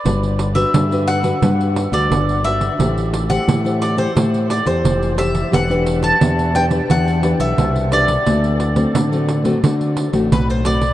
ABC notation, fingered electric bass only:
X:1
M:4/4
L:1/16
Q:1/4=88
K:G
V:1 name="Fingered electric bass" clef=bass
G,,,4 G,,4 G,,3 D,, G,,,4 | A,,,4 A,,4 A,,3 E,, =F,,,4 | E,,,4 E,,4 E,,3 B,,, C,,4 | D,,4 D,4 D,3 A,,, B,,,4 |]